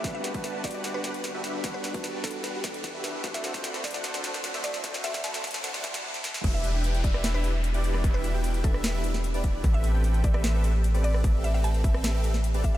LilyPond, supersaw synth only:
\new Staff \with { instrumentName = "Supersaw synth" } { \time 4/4 \key e \minor \tempo 4 = 150 <d' fis' g' b' fis''>8. <d' fis' g' b' a''>8. <d' fis' g' b' fis''>8. <d' fis' g' b' fis''>8 r8 <d' fis' g' b' e''>8. | <d' fis' g' b' fis''>8. <d' fis' g' b' a''>8. <d' fis' g' b' fis''>8. <d' fis' g' b' fis''>8 r8 <d' fis' g' b' e''>8. | <d' fis' a' c'' fis''>8. <d' fis' a' c'' b''>8. <d' fis' a' c'' fis''>8. <d' fis' a' c'' fis''>8 r8 <d' fis' a' c'' e''>8. | <d' fis' a' c'' fis''>8. <d' fis' a' c'' b''>8. <d' fis' a' c'' fis''>8. <d' fis' a' c'' fis''>8 r4 r16 |
<d' e' g' b' e''>8. <d' e' g' b' g''>8. <d' e' g' b' e''>8. <d' e' g' b' e''>8 r8 <d' e' g' b' d''>8. | <d' e' g' b' e''>8. <d' e' g' b' g''>8. <d' e' g' b' e''>8. <d' e' g' b' e''>8 r8 <d' e' g' b' d''>8. | <c' g' a' b' e''>8. <c' g' a' b' g''>8. <c' g' a' b' e''>8. <c' g' a' b' e''>8 r8 <c' g' a' b' d''>8. | <c' g' a' b' e''>8. <c' g' a' b' g''>8. <c' g' a' b' e''>8. <c' g' a' b' e''>8 r8 <c' g' a' b' d''>8. | }